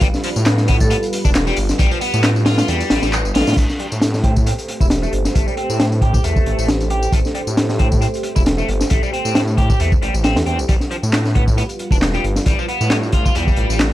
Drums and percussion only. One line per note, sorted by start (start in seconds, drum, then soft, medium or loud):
0.01 kick loud
0.01 closed hi-hat medium
0.01 tambourine medium
0.14 snare soft
0.14 tambourine soft
0.24 closed hi-hat medium
0.24 open hi-hat medium
0.36 tambourine medium
0.45 snare loud
0.45 clap loud
0.45 closed hi-hat medium
0.45 tambourine medium
0.57 snare medium
0.57 tambourine soft
0.68 kick medium
0.68 closed hi-hat medium
0.68 open hi-hat medium
0.80 kick medium
0.80 tambourine medium
0.90 closed hi-hat medium
0.90 tambourine soft
1.03 closed hi-hat soft
1.03 tambourine soft
1.13 closed hi-hat medium
1.13 open hi-hat medium
1.25 kick loud
1.25 tambourine medium
1.35 snare loud
1.35 clap loud
1.35 closed hi-hat medium
1.35 tambourine medium
1.47 tambourine soft
1.56 closed hi-hat medium
1.56 open hi-hat medium
1.69 snare medium
1.69 tambourine medium
1.79 kick loud
1.79 closed hi-hat medium
1.79 tambourine medium
1.91 tambourine soft
2.01 closed hi-hat medium
2.01 open hi-hat medium
2.14 tambourine medium
2.23 snare loud
2.23 clap loud
2.23 closed hi-hat medium
2.23 tambourine medium
2.36 tambourine soft
2.46 snare loud
2.46 closed hi-hat medium
2.46 open hi-hat medium
2.58 snare loud
2.58 closed hi-hat medium
2.58 tambourine medium
2.68 closed hi-hat medium
2.68 tambourine medium
2.81 closed hi-hat soft
2.81 open hi-hat medium
2.81 tambourine soft
2.90 snare loud
2.90 closed hi-hat medium
2.90 open hi-hat medium
3.02 snare medium
3.02 tambourine medium
3.13 clap loud
3.13 tambourine medium
3.25 tambourine soft
3.35 snare medium
3.35 closed hi-hat medium
3.35 open hi-hat medium
3.40 snare medium
3.40 closed hi-hat medium
3.47 snare medium
3.47 closed hi-hat medium
3.47 tambourine medium
3.52 snare medium
3.52 closed hi-hat medium
3.57 kick loud
3.57 closed hi-hat medium
3.57 crash medium
3.57 tambourine medium
3.69 snare soft
3.69 tambourine soft
3.79 closed hi-hat medium
3.92 tambourine medium
4.01 snare loud
4.01 closed hi-hat medium
4.01 tambourine medium
4.14 snare medium
4.14 tambourine soft
4.24 kick loud
4.24 closed hi-hat medium
4.36 kick loud
4.36 tambourine medium
4.46 closed hi-hat medium
4.46 tambourine medium
4.58 closed hi-hat soft
4.58 tambourine soft
4.68 closed hi-hat medium
4.81 kick loud
4.81 tambourine medium
4.90 snare loud
4.90 closed hi-hat medium
4.90 tambourine medium
5.03 tambourine soft
5.13 closed hi-hat medium
5.25 snare soft
5.25 tambourine medium
5.35 kick loud
5.35 closed hi-hat medium
5.35 tambourine medium
5.48 tambourine soft
5.57 closed hi-hat medium
5.70 tambourine medium
5.80 snare loud
5.80 closed hi-hat medium
5.80 tambourine medium
5.92 tambourine soft
6.01 kick medium
6.01 closed hi-hat medium
6.14 kick medium
6.14 tambourine medium
6.24 closed hi-hat medium
6.24 tambourine medium
6.36 kick medium
6.36 tambourine soft
6.46 closed hi-hat medium
6.59 tambourine medium
6.68 snare loud
6.68 closed hi-hat medium
6.68 tambourine medium
6.80 closed hi-hat soft
6.80 tambourine soft
6.90 closed hi-hat medium
7.03 tambourine medium
7.12 kick loud
7.12 closed hi-hat medium
7.12 tambourine medium
7.25 snare soft
7.25 tambourine soft
7.35 closed hi-hat medium
7.47 tambourine medium
7.57 snare loud
7.57 closed hi-hat medium
7.57 tambourine soft
7.69 snare medium
7.69 tambourine soft
7.79 kick medium
7.79 closed hi-hat medium
7.92 kick medium
7.92 tambourine medium
8.02 closed hi-hat medium
8.02 tambourine medium
8.14 closed hi-hat soft
8.14 tambourine soft
8.23 closed hi-hat medium
8.36 kick medium
8.36 tambourine medium
8.46 snare loud
8.46 closed hi-hat medium
8.46 tambourine medium
8.58 tambourine soft
8.69 closed hi-hat medium
8.81 snare medium
8.81 tambourine medium
8.90 kick loud
8.90 closed hi-hat medium
8.90 tambourine medium
9.03 tambourine soft
9.14 closed hi-hat medium
9.25 tambourine medium
9.35 snare loud
9.35 closed hi-hat medium
9.35 tambourine medium
9.48 tambourine soft
9.58 kick medium
9.58 closed hi-hat medium
9.70 kick medium
9.70 tambourine medium
9.80 closed hi-hat medium
9.80 tambourine soft
9.92 kick loud
9.92 tambourine soft
10.02 closed hi-hat medium
10.14 tambourine medium
10.24 snare loud
10.24 closed hi-hat medium
10.24 tambourine medium
10.36 snare loud
10.36 closed hi-hat medium
10.36 tambourine soft
10.46 closed hi-hat medium
10.59 tambourine medium
10.69 kick loud
10.69 closed hi-hat medium
10.69 tambourine soft
10.81 snare soft
10.81 tambourine soft
10.91 closed hi-hat medium
11.03 tambourine medium
11.13 snare loud
11.13 clap loud
11.13 closed hi-hat medium
11.13 tambourine medium
11.25 snare soft
11.25 tambourine soft
11.35 kick loud
11.35 closed hi-hat medium
11.48 kick medium
11.48 tambourine medium
11.58 closed hi-hat medium
11.58 tambourine soft
11.69 closed hi-hat soft
11.69 tambourine soft
11.79 closed hi-hat medium
11.91 kick medium
11.91 tambourine medium
12.02 snare loud
12.02 clap loud
12.02 closed hi-hat medium
12.02 tambourine medium
12.14 tambourine soft
12.24 closed hi-hat medium
12.36 snare soft
12.36 tambourine medium
12.46 kick loud
12.46 closed hi-hat medium
12.46 tambourine soft
12.59 tambourine soft
12.68 closed hi-hat medium
12.81 tambourine medium
12.90 snare loud
12.90 clap loud
12.90 closed hi-hat medium
12.90 tambourine soft
13.03 tambourine soft
13.12 kick medium
13.12 closed hi-hat medium
13.26 kick medium
13.26 tambourine medium
13.35 closed hi-hat medium
13.35 tambourine soft
13.47 kick medium
13.47 tambourine soft
13.56 closed hi-hat medium
13.70 tambourine medium
13.79 snare loud
13.79 clap loud
13.79 closed hi-hat medium
13.79 tambourine medium